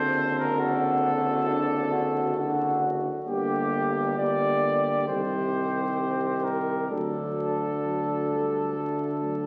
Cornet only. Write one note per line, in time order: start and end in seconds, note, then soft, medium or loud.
0.00 0.38 C5 medium
0.39 0.60 A#4 medium
0.61 2.78 A4 medium
3.27 4.14 G4 medium
4.18 5.06 D5 medium
5.08 6.46 C5 medium
6.44 6.90 A#4 medium
6.91 9.46 A4 medium